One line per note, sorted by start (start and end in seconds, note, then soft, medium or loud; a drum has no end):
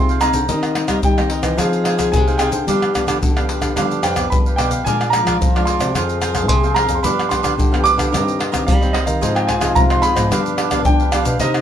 0.00 0.29 C3 medium
0.00 0.47 C3 medium
0.00 0.17 C4 medium
0.00 0.17 D#4 medium
0.00 0.22 F4 medium
0.00 0.18 G#4 medium
0.00 0.23 C6 medium
0.09 0.20 G#4 soft
0.09 0.21 C5 soft
0.09 0.21 F5 soft
0.09 pandeiro soft
0.09 shaker soft
0.21 0.39 C4 soft
0.21 0.34 D#4 medium
0.21 0.40 D#4 medium
0.21 0.34 G#4 medium
0.21 0.40 G#4 medium
0.21 0.33 C5 medium
0.21 0.33 F5 medium
0.21 0.99 A#5 medium
0.21 pandeiro medium
0.21 tamborim medium
0.21 shaker medium
0.33 0.46 D3 medium
0.33 0.48 G#4 soft
0.33 0.48 C5 soft
0.33 pandeiro medium
0.33 shaker medium
0.33 surdo soft
0.48 0.84 D#3 medium
0.48 1.01 D#3 medium
0.48 0.72 A#3 medium
0.48 0.72 C4 medium
0.48 0.74 D#4 medium
0.48 1.00 D#4 medium
0.48 0.73 G4 medium
0.48 0.75 A#4 medium
0.48 0.75 C5 medium
0.48 0.76 D#5 medium
0.48 pandeiro medium
0.48 shaker medium
0.48 surdo medium
0.63 pandeiro soft
0.63 tamborim medium
0.63 shaker soft
0.75 1.02 A#3 soft
0.75 1.02 C4 medium
0.75 0.88 D#4 soft
0.75 1.02 G4 medium
0.75 0.89 A#4 soft
0.75 0.89 C5 soft
0.75 0.89 D#5 medium
0.75 pandeiro medium
0.75 tamborim medium
0.88 1.01 G3 medium
0.88 0.99 D#4 medium
0.88 0.99 A#4 medium
0.88 0.99 C5 medium
0.88 0.99 D#5 medium
0.88 pandeiro medium
0.88 tamborim medium
0.88 shaker medium
0.88 surdo soft
1.03 1.56 D#3 medium
1.03 1.27 G3 medium
1.03 1.60 D#4 medium
1.03 1.55 G5 medium
1.03 pandeiro medium
1.03 shaker medium
1.03 surdo medium
1.18 1.55 A#3 medium
1.18 1.55 C4 medium
1.18 1.55 G4 medium
1.18 1.30 A#4 soft
1.18 1.31 C5 soft
1.18 1.30 D#5 soft
1.18 pandeiro soft
1.18 tamborim medium
1.18 shaker soft
1.30 1.44 D#4 soft
1.30 1.44 A#4 soft
1.30 1.43 C5 soft
1.30 1.43 D#5 medium
1.30 pandeiro medium
1.43 1.58 E3 medium
1.43 1.58 A#4 soft
1.43 1.57 C5 soft
1.43 1.57 D#5 soft
1.43 pandeiro medium
1.43 tamborim medium
1.43 shaker medium
1.43 surdo soft
1.58 2.13 F3 loud
1.58 2.11 F3 medium
1.58 1.95 C4 medium
1.58 1.84 D#4 medium
1.58 1.96 D#4 medium
1.58 2.68 G#4 loud
1.58 1.85 G#4 medium
1.58 1.96 G#4 medium
1.58 1.85 C5 medium
1.58 1.82 F5 medium
1.58 1.85 F5 medium
1.58 pandeiro medium
1.58 tamborim medium
1.58 shaker medium
1.58 surdo medium
1.73 pandeiro soft
1.73 shaker soft
1.84 1.97 D#4 medium
1.84 1.98 G#4 medium
1.84 1.98 C5 medium
1.84 1.90 F5 medium
1.84 1.99 F5 medium
1.84 pandeiro medium
1.84 tamborim medium
1.98 2.22 C4 medium
1.98 2.08 D#4 medium
1.98 2.22 D#4 medium
1.98 2.08 G#4 medium
1.98 2.22 G#4 medium
1.98 2.08 C5 medium
1.98 2.09 F5 medium
1.98 pandeiro medium
1.98 tamborim medium
1.98 shaker medium
1.98 surdo soft
2.12 2.48 C3 medium
2.12 2.65 C3 medium
2.12 2.41 G#5 medium
2.12 pandeiro medium
2.12 shaker medium
2.12 surdo loud
2.28 2.37 C4 medium
2.28 2.37 D#4 medium
2.28 2.37 G#4 medium
2.28 2.40 G#4 soft
2.28 2.40 C5 soft
2.28 2.40 F5 soft
2.28 pandeiro soft
2.28 shaker soft
2.38 2.58 C4 medium
2.38 2.53 D#4 medium
2.38 2.58 D#4 medium
2.38 2.58 G#4 medium
2.38 2.53 G#4 medium
2.38 2.51 C5 medium
2.38 3.72 G5 medium
2.38 pandeiro medium
2.38 tamborim medium
2.38 shaker medium
2.42 2.50 F5 medium
2.52 2.64 D3 medium
2.52 2.67 G#4 soft
2.52 2.66 C5 soft
2.52 2.65 F5 soft
2.52 pandeiro medium
2.52 shaker medium
2.52 surdo soft
2.67 3.20 G2 medium
2.67 2.91 F3 medium
2.67 3.02 G3 medium
2.67 2.91 B3 medium
2.67 2.93 D4 medium
2.67 2.91 D4 medium
2.67 3.21 G4 medium
2.67 2.94 G4 medium
2.67 2.94 B4 medium
2.67 2.95 F5 medium
2.67 pandeiro medium
2.67 shaker medium
2.67 surdo medium
2.82 pandeiro soft
2.82 tamborim medium
2.82 shaker soft
2.94 3.31 F3 medium
2.94 3.31 B3 medium
2.94 3.06 D4 soft
2.94 3.31 D4 medium
2.94 3.06 G4 soft
2.94 3.07 B4 soft
2.94 3.07 F5 soft
2.94 pandeiro medium
2.94 tamborim medium
2.94 shaker medium
2.94 surdo soft
3.07 3.19 D3 medium
3.07 3.17 D4 medium
3.07 3.17 G4 medium
3.07 3.17 B4 medium
3.07 3.18 F5 medium
3.07 pandeiro medium
3.07 tamborim medium
3.07 shaker medium
3.07 surdo soft
3.22 3.45 D3 medium
3.22 3.74 D3 medium
3.22 4.55 G4 medium
3.22 pandeiro medium
3.22 shaker medium
3.22 surdo medium
3.36 3.72 F3 medium
3.36 3.73 B3 medium
3.36 3.73 D4 medium
3.36 3.48 G4 soft
3.36 3.49 B4 soft
3.36 3.49 F5 soft
3.36 pandeiro soft
3.36 tamborim medium
3.36 shaker soft
3.49 3.62 D4 soft
3.49 3.62 G4 medium
3.49 3.62 B4 medium
3.49 3.60 F5 medium
3.49 pandeiro medium
3.61 3.74 D3 medium
3.61 3.76 G4 soft
3.61 3.76 B4 soft
3.61 3.75 F5 soft
3.61 pandeiro medium
3.61 tamborim medium
3.61 shaker medium
3.61 surdo soft
3.76 4.29 G2 medium
3.76 4.00 D3 medium
3.76 4.02 F3 medium
3.76 4.03 B3 medium
3.76 4.02 D4 medium
3.76 4.03 D4 medium
3.76 4.02 G4 medium
3.76 4.03 B4 medium
3.76 3.82 F5 medium
3.76 4.03 F5 medium
3.76 pandeiro medium
3.76 tamborim medium
3.76 shaker medium
3.76 surdo medium
3.91 pandeiro soft
3.91 shaker soft
4.03 4.28 F2 medium
4.03 4.16 D4 medium
4.03 4.16 G4 medium
4.03 4.16 B4 medium
4.03 4.17 F5 medium
4.03 4.32 G5 medium
4.03 pandeiro medium
4.03 tamborim medium
4.03 shaker medium
4.16 4.53 F3 medium
4.16 4.54 B3 medium
4.16 4.54 D4 medium
4.16 4.26 D4 medium
4.16 4.27 G4 medium
4.16 4.27 B4 medium
4.16 4.27 F5 medium
4.16 pandeiro medium
4.16 tamborim medium
4.16 shaker medium
4.16 surdo soft
4.30 4.56 G2 medium
4.30 4.83 D3 medium
4.30 4.36 B5 medium
4.30 pandeiro medium
4.30 shaker medium
4.30 surdo loud
4.46 4.57 G4 soft
4.46 4.58 B4 soft
4.46 4.58 F5 soft
4.46 pandeiro soft
4.46 shaker soft
4.56 4.83 B2 medium
4.56 4.83 F3 medium
4.56 4.84 B3 medium
4.56 4.71 D4 medium
4.56 4.84 D4 medium
4.56 4.71 G4 medium
4.56 4.71 B4 medium
4.56 4.70 F5 medium
4.56 4.83 G5 medium
4.56 pandeiro medium
4.56 tamborim medium
4.71 4.85 G4 soft
4.71 4.85 B4 soft
4.71 4.84 F5 medium
4.71 pandeiro medium
4.71 shaker medium
4.71 surdo soft
4.85 5.21 A#2 medium
4.85 5.38 A#2 medium
4.85 5.02 F3 medium
4.85 5.03 G#3 medium
4.85 5.03 D4 medium
4.85 5.96 F4 medium
4.85 5.12 G#4 medium
4.85 5.13 A#4 medium
4.85 5.13 D5 medium
4.85 5.13 F5 medium
4.85 5.14 G#5 medium
4.85 pandeiro medium
4.85 shaker medium
4.85 surdo medium
5.01 pandeiro soft
5.01 tamborim medium
5.01 shaker soft
5.10 5.39 F3 medium
5.10 5.39 G#3 medium
5.10 5.39 D4 medium
5.10 5.25 G#4 soft
5.10 5.26 A#4 soft
5.10 5.62 A#5 medium
5.10 pandeiro medium
5.10 tamborim medium
5.10 shaker medium
5.14 5.26 D5 medium
5.14 5.26 F5 medium
5.25 5.37 F3 medium
5.25 5.36 G#4 medium
5.25 5.36 A#4 medium
5.25 5.36 D5 medium
5.25 5.36 F5 medium
5.25 pandeiro medium
5.25 tamborim medium
5.25 shaker medium
5.25 surdo soft
5.41 5.93 F2 soft
5.41 5.64 F3 medium
5.41 pandeiro medium
5.41 shaker medium
5.41 surdo medium
5.55 5.92 F3 medium
5.55 5.92 G#3 medium
5.55 5.92 D4 medium
5.55 5.67 A#4 soft
5.55 5.67 D5 soft
5.55 5.68 F5 soft
5.55 pandeiro soft
5.55 tamborim medium
5.55 shaker soft
5.65 5.80 G#4 soft
5.65 5.81 A#4 soft
5.65 5.79 D5 medium
5.65 5.80 F5 soft
5.65 6.45 C6 medium
5.65 pandeiro medium
5.80 5.94 C3 medium
5.80 5.94 A#4 soft
5.80 5.94 D5 soft
5.80 5.94 F5 soft
5.80 pandeiro medium
5.80 tamborim medium
5.80 shaker medium
5.80 surdo soft
5.94 6.49 F2 medium
5.94 6.47 F2 medium
5.94 6.32 F3 medium
5.94 6.32 A#3 medium
5.94 6.32 C4 medium
5.94 6.20 F4 medium
5.94 7.06 G#4 loud
5.94 6.21 A#4 medium
5.94 6.22 C5 medium
5.94 6.22 F5 medium
5.94 pandeiro medium
5.94 tamborim medium
5.94 shaker medium
5.94 surdo medium
6.09 pandeiro soft
6.09 shaker soft
6.21 6.34 F4 medium
6.21 6.34 A#4 medium
6.21 6.34 C5 medium
6.21 6.35 F5 medium
6.21 pandeiro medium
6.21 tamborim medium
6.21 shaker medium
6.34 6.58 F3 medium
6.34 6.59 A#3 medium
6.34 6.59 C4 medium
6.34 6.45 F4 medium
6.34 6.45 A#4 medium
6.34 6.45 C5 medium
6.34 6.45 F5 medium
6.34 pandeiro medium
6.34 tamborim medium
6.34 shaker medium
6.34 surdo soft
6.48 6.84 C3 medium
6.48 7.01 C3 medium
6.48 6.77 C6 loud
6.48 pandeiro medium
6.48 shaker medium
6.48 surdo medium
6.63 6.73 F3 medium
6.63 6.73 A#3 medium
6.63 6.73 C4 medium
6.63 6.77 A#4 soft
6.63 6.77 C5 soft
6.63 6.76 F5 soft
6.63 pandeiro soft
6.63 shaker soft
6.74 6.94 F3 medium
6.74 6.94 A#3 medium
6.74 6.94 C4 medium
6.74 6.90 F4 medium
6.74 6.90 A#4 medium
6.74 6.89 C5 medium
6.74 6.95 A#5 medium
6.74 pandeiro medium
6.74 tamborim medium
6.79 6.88 F5 medium
6.89 7.01 F2 medium
6.89 7.04 A#4 soft
6.89 7.03 C5 soft
6.89 7.03 F5 medium
6.89 pandeiro medium
6.89 shaker medium
6.89 surdo soft
6.95 7.03 C6 medium
7.03 7.56 G2 medium
7.03 7.39 G2 medium
7.03 7.27 F3 medium
7.03 7.27 B3 medium
7.03 7.27 D4 medium
7.03 7.29 D4 medium
7.03 8.12 G4 loud
7.03 7.30 G4 medium
7.03 7.30 B4 medium
7.03 7.31 F5 medium
7.03 7.32 B5 medium
7.03 pandeiro medium
7.03 shaker medium
7.03 surdo medium
7.19 pandeiro soft
7.19 tamborim medium
7.19 shaker soft
7.29 7.57 F3 soft
7.29 7.57 B3 medium
7.29 7.42 D4 medium
7.29 7.57 D4 medium
7.29 7.42 G4 soft
7.29 7.42 B4 soft
7.29 7.43 F5 medium
7.29 7.87 C6 medium
7.29 pandeiro medium
7.29 tamborim medium
7.29 shaker medium
7.29 surdo soft
7.43 7.56 D3 medium
7.43 7.53 D4 medium
7.43 7.53 G4 medium
7.43 7.54 B4 medium
7.43 7.54 F5 medium
7.43 pandeiro medium
7.43 tamborim medium
7.43 shaker medium
7.43 surdo soft
7.57 8.10 D3 medium
7.57 7.82 D3 medium
7.57 pandeiro medium
7.57 shaker medium
7.57 surdo medium
7.71 8.09 F3 medium
7.71 8.09 B3 medium
7.71 8.09 D4 medium
7.71 7.84 G4 soft
7.71 7.85 B4 soft
7.71 7.85 F5 medium
7.71 pandeiro soft
7.71 tamborim medium
7.71 shaker soft
7.84 7.98 D4 soft
7.84 7.98 G4 soft
7.84 7.97 B4 medium
7.84 7.96 F5 medium
7.84 8.69 D6 loud
7.84 pandeiro medium
7.84 shaker medium
7.97 8.12 D3 medium
7.97 8.12 G4 soft
7.97 8.12 B4 soft
7.97 8.11 F5 medium
7.97 pandeiro medium
7.97 tamborim medium
7.97 shaker medium
7.97 surdo soft
8.12 8.65 G2 medium
8.12 8.68 G2 medium
8.12 8.38 D#3 medium
8.12 8.39 A#3 medium
8.12 8.39 C4 medium
8.12 8.91 G4 medium
8.12 8.38 A#4 medium
8.12 8.39 C5 medium
8.12 8.40 D#5 medium
8.12 pandeiro medium
8.12 tamborim medium
8.12 shaker medium
8.12 surdo medium
8.28 pandeiro soft
8.28 shaker soft
8.39 8.50 A#4 medium
8.39 8.51 C5 medium
8.39 8.52 D#5 medium
8.39 pandeiro medium
8.39 tamborim medium
8.52 8.76 D#3 medium
8.52 8.76 A#3 medium
8.52 8.77 C4 medium
8.52 8.62 A#4 medium
8.52 8.62 C5 medium
8.52 8.63 D#5 medium
8.52 pandeiro medium
8.52 tamborim medium
8.52 shaker medium
8.52 surdo soft
8.67 9.20 G2 medium
8.67 9.03 G3 medium
8.67 8.93 F5 medium
8.67 pandeiro medium
8.67 shaker medium
8.67 surdo loud
8.81 8.91 D#3 medium
8.81 8.91 A#3 medium
8.81 8.91 C4 medium
8.81 8.93 C5 soft
8.81 8.94 D#5 soft
8.81 pandeiro soft
8.81 shaker soft
8.93 9.20 D#3 soft
8.93 9.20 A#3 medium
8.93 9.20 C4 medium
8.93 9.07 A#4 medium
8.93 9.07 C5 medium
8.93 8.98 D#5 medium
8.93 9.05 D#5 medium
8.93 pandeiro medium
8.93 tamborim medium
9.06 9.19 D#3 medium
9.06 9.21 C5 soft
9.06 9.20 D#5 medium
9.06 9.36 F5 medium
9.06 pandeiro medium
9.06 shaker medium
9.06 surdo soft
9.21 9.74 G#2 medium
9.21 9.57 G#2 medium
9.21 9.48 F3 medium
9.21 9.48 C4 medium
9.21 9.48 D#4 medium
9.21 9.47 F4 medium
9.21 10.33 F4 loud
9.21 9.47 G#4 medium
9.21 9.48 C5 medium
9.21 9.48 D#5 medium
9.21 pandeiro medium
9.21 shaker medium
9.21 surdo medium
9.35 9.49 G5 medium
9.35 pandeiro soft
9.35 tamborim medium
9.35 shaker soft
9.47 9.59 F4 soft
9.47 9.60 G#4 medium
9.47 9.60 C5 soft
9.47 9.61 D#5 medium
9.47 9.74 G#5 medium
9.47 pandeiro medium
9.47 tamborim medium
9.47 surdo soft
9.60 9.74 C3 medium
9.60 9.85 F3 medium
9.60 9.86 C4 medium
9.60 9.86 D#4 medium
9.60 9.71 F4 medium
9.60 9.71 G#4 medium
9.60 9.72 C5 medium
9.60 9.72 D#5 medium
9.60 pandeiro medium
9.60 tamborim medium
9.60 shaker medium
9.60 surdo soft
9.75 10.29 G#2 medium
9.75 10.00 C3 medium
9.75 9.80 A#5 medium
9.75 pandeiro medium
9.75 shaker medium
9.75 surdo medium
9.90 10.14 F3 medium
9.90 10.14 C4 medium
9.90 10.14 D#4 medium
9.90 10.02 G#4 soft
9.90 10.03 C5 soft
9.90 10.03 D#5 medium
9.90 10.03 C6 medium
9.90 pandeiro soft
9.90 tamborim medium
9.90 shaker soft
10.02 10.16 F4 soft
10.02 10.16 G#4 medium
10.02 10.15 C5 soft
10.02 10.14 D#5 medium
10.02 10.81 B5 loud
10.02 pandeiro medium
10.02 shaker medium
10.15 10.32 G#2 loud
10.15 10.67 F3 medium
10.15 10.67 B3 medium
10.15 10.68 D4 medium
10.15 10.30 G#4 soft
10.15 10.30 C5 soft
10.15 10.29 D#5 soft
10.15 pandeiro medium
10.15 tamborim medium
10.15 shaker medium
10.15 surdo soft
10.30 10.85 G2 loud
10.30 10.84 G2 medium
10.30 10.56 D4 medium
10.30 11.42 D4 loud
10.30 10.56 G4 medium
10.30 10.57 B4 medium
10.30 10.58 F5 medium
10.30 pandeiro medium
10.30 tamborim medium
10.30 shaker medium
10.30 surdo medium
10.46 pandeiro soft
10.46 shaker soft
10.57 10.70 D4 medium
10.57 10.71 G4 medium
10.57 10.71 B4 medium
10.57 10.71 F5 medium
10.57 pandeiro medium
10.57 tamborim medium
10.71 11.09 F3 medium
10.71 11.09 B3 medium
10.71 10.81 D4 medium
10.71 11.09 D4 medium
10.71 10.81 G4 medium
10.71 10.82 B4 medium
10.71 10.82 F5 medium
10.71 pandeiro medium
10.71 tamborim medium
10.71 shaker medium
10.71 surdo soft
10.85 11.21 D3 medium
10.85 11.39 D3 medium
10.85 11.14 G5 loud
10.85 pandeiro medium
10.85 shaker medium
10.85 surdo loud
10.99 11.13 G4 soft
10.99 11.13 B4 soft
10.99 11.13 F5 soft
10.99 pandeiro soft
10.99 shaker soft
11.12 11.30 F3 medium
11.12 11.30 B3 medium
11.12 11.26 D4 medium
11.12 11.30 D4 medium
11.12 11.26 G4 medium
11.12 11.25 B4 medium
11.12 11.38 F5 medium
11.12 11.24 F5 medium
11.12 pandeiro medium
11.12 tamborim medium
11.12 shaker medium
11.25 11.38 B2 medium
11.25 11.40 G4 soft
11.25 11.39 B4 soft
11.25 11.39 F5 medium
11.25 pandeiro medium
11.25 shaker medium
11.25 surdo soft
11.40 11.61 C3 medium
11.40 11.61 A#3 medium
11.40 11.61 D#4 medium
11.40 11.61 D#4 loud
11.40 11.61 D#4 medium
11.40 11.61 G4 medium
11.40 11.61 A#4 medium
11.40 11.61 C5 medium
11.40 11.61 D#5 medium
11.40 pandeiro medium
11.40 shaker medium
11.40 surdo medium
11.54 pandeiro soft
11.54 tamborim medium
11.54 shaker soft